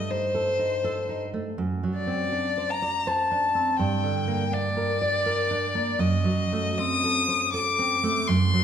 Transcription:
Already playing: G2 A3 D#5
0.11 D#4 C5
0.35 A4
0.59 D#4
0.84 A4
1.09 D#4
1.34 A3
1.58 F#2
1.83 F#3
1.96 D5
2.07 C4
2.33 D4
2.57 C5
2.71 A#5
2.82 D5
3.07 C5 A5
3.31 D4
3.55 C4
3.79 G2 G5
4.03 D3
4.28 A#3
4.52 D4 D5
4.77 A#4
5.02 D5
5.26 A#4
5.51 D4
5.75 A#3
5.99 F#2 D#5
6.24 F#3
6.53 A3
6.78 C4 D#6
7.03 A4
7.28 C5
7.53 A4 D6
7.79 C4
8.03 A3
8.27 F#2 C6
8.54 F#3

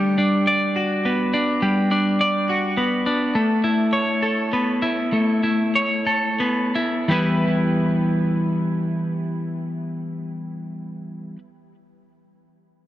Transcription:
Already playing: G3 D4
0.18 D4
0.47 D5
0.76 F#4
1.05 B3
1.34 D4
1.62 G3
1.91 D4
2.21 D5
2.49 F#4
2.77 B3
3.06 D4
3.35 A3
3.64 E4
3.93 C#5
4.23 A4
4.53 B3
4.82 E4
5.13 A3
5.43 E4
5.76 C#5
6.07 A4
6.40 B3
6.75 E4
7.08 E3 G3 B3 E4 B4

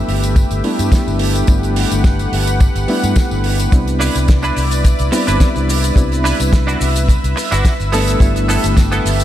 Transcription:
Already playing: G3 A3 B3 D4 E4 G4 B4 E5
0.08 G1, open hi-hat
0.23 closed hi-hat, tambourine
0.36 kick, closed hi-hat, tambourine
0.51 G1, closed hi-hat, tambourine
0.64 G3 A3 B3 D4 E4, open hi-hat
0.79 G2, closed hi-hat, tambourine
0.92 G3 A3 B3 D4 E4, kick, snare, closed hi-hat, tambourine
1.07 G1, tambourine
1.19 F#5, open hi-hat
1.35 closed hi-hat, tambourine
1.47 G1 G3 A3 B3 D4 E4, kick, closed hi-hat, tambourine
1.63 closed hi-hat, tambourine
1.76 open hi-hat
1.91 G1, closed hi-hat, tambourine
2.04 kick, snare, closed hi-hat, tambourine
2.19 closed hi-hat, tambourine
2.32 G1, open hi-hat
2.47 closed hi-hat, tambourine
2.60 kick, closed hi-hat, tambourine
2.75 G1, closed hi-hat, tambourine
2.87 G3 A3 B3 D4 E4, open hi-hat
3.03 G2, closed hi-hat, tambourine
3.16 kick, snare, closed hi-hat, tambourine
3.31 G1, tambourine
3.44 open hi-hat
3.59 closed hi-hat, tambourine
3.71 C2 G3 B3 C4 D4 E4 D5, kick, closed hi-hat, tambourine, shaker
3.88 closed hi-hat, tambourine, shaker
4.00 D4 E4 B4, open hi-hat, shaker
4.15 C2, closed hi-hat, tambourine, shaker
4.28 muted clean electric guitar stroke, kick, snare, closed hi-hat, tambourine, shaker
4.43 D4 E4 B4, closed hi-hat, tambourine, shaker
4.57 C2, open hi-hat, shaker
4.71 closed hi-hat, tambourine, shaker
4.84 muted clean electric guitar stroke, kick, closed hi-hat, tambourine, shaker
4.99 C2, closed hi-hat, tambourine, shaker
5.12 G3 B3 C4 D4 E4, muted clean electric guitar stroke, open hi-hat, shaker
5.27 G1 D4 E4 B4, closed hi-hat, tambourine, shaker
5.40 G3 B3 C4 D4 E4, kick, snare, closed hi-hat, tambourine, shaker
5.56 C2, tambourine, shaker
5.68 muted clean electric guitar stroke, open hi-hat, shaker
5.84 closed hi-hat, tambourine, shaker
5.96 C2 G3 B3 C4 D4 E4 E5, kick, closed hi-hat, tambourine, shaker
6.12 closed hi-hat, tambourine, shaker
6.24 D4 E4 B4, open hi-hat, shaker
6.40 C2, closed hi-hat, tambourine, shaker
6.52 muted clean electric guitar stroke, kick, snare, closed hi-hat, tambourine, shaker
6.67 D4 E4 F#4, closed hi-hat, tambourine, shaker
6.81 C2, open hi-hat, shaker
6.96 closed hi-hat, tambourine, shaker
7.08 muted clean electric guitar stroke, kick, closed hi-hat, tambourine, shaker
7.24 C2, closed hi-hat, tambourine, shaker
7.36 muted clean electric guitar stroke, open hi-hat, shaker
7.51 G1 D4 E4 F#4, closed hi-hat, tambourine, shaker
7.65 kick, snare, closed hi-hat, tambourine, shaker
7.80 G1, tambourine, shaker
7.92 G3 A3 B3 D4 E4 G4 A4, open hi-hat, shaker
8.08 closed hi-hat, tambourine, shaker
8.20 G1 G3 A3 B3 D4 E4, kick, closed hi-hat, tambourine, shaker
8.36 closed hi-hat, tambourine, shaker
8.48 B3 E4 A4, open hi-hat, shaker
8.64 G1, closed hi-hat, tambourine, shaker
8.76 muted clean electric guitar stroke, kick, snare, closed hi-hat, tambourine, shaker
8.91 B3 E4 A4, closed hi-hat, tambourine, shaker
9.05 G1, open hi-hat, shaker
9.20 closed hi-hat, tambourine, shaker

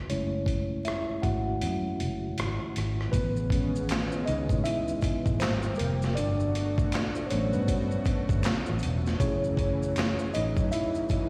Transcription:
0.09 F#1 G#3 A3 C#4 E4 C#5, closed hi-hat
0.46 kick, closed hi-hat
0.85 E4 E5, cross-stick, closed hi-hat
1.10 muted fingered electric bass stroke
1.22 G#1 G#3 A3 E4 F#4 F#5, kick, closed hi-hat
1.61 F#2, closed hi-hat
2.00 F#1, closed hi-hat
2.38 G#1, cross-stick, closed hi-hat
2.76 G#1, cross-stick, closed hi-hat
3.01 cross-stick
3.12 A1 C#3 G#3 B3 C#4 B4, kick, closed hi-hat, maracas
3.37 maracas
3.50 D#3 G#3 B3 C#4, kick, closed hi-hat
3.76 maracas
3.89 finger snap, snare, clap, closed hi-hat, maracas
4.12 maracas
4.26 C#2 D#4 D#5, closed hi-hat, maracas
4.49 A2, kick, maracas
4.64 E4 E5, closed hi-hat, maracas
4.88 maracas
5.02 muted fingered electric bass stroke, kick, closed hi-hat, maracas
5.26 A1, kick, maracas
5.40 G#1 C3 G3 A#3 C4 G4 C5, finger snap, snare, clap, closed hi-hat, maracas
5.62 maracas
5.75 A#4, maracas
5.79 F1 A#3, closed hi-hat
6.02 snare, maracas
6.15 G1 B2 A3 D4 F#4 D5, closed hi-hat, maracas
6.40 maracas
6.55 closed hi-hat
6.78 kick, maracas
6.92 finger snap, snare, clap, closed hi-hat, maracas
7.15 maracas
7.26 C5 C#5, maracas
7.31 A1 F#3 A3 B3 C#4, closed hi-hat
7.53 G2 B3 B4, maracas
7.68 kick, closed hi-hat, maracas
7.91 maracas
8.05 muted fingered electric bass stroke, kick, closed hi-hat, maracas
8.29 G1, kick, maracas
8.43 finger snap, snare, clap, closed hi-hat, maracas
8.66 A1, maracas
8.79 closed hi-hat, maracas
8.84 E1
9.06 snare, maracas
9.20 F#1 C#3 E3 F#3 A3 C#4 E4 G#4 C#5, kick, closed hi-hat, maracas
9.44 maracas
9.57 kick, closed hi-hat
9.83 maracas
9.96 finger snap, snare, clap, closed hi-hat, maracas
10.19 maracas
10.34 A1 D#4 D#5, closed hi-hat, maracas
10.57 F#2, kick, maracas
10.72 E4 E5, closed hi-hat, maracas
10.95 maracas
11.09 muted fingered electric bass stroke, kick, closed hi-hat, maracas

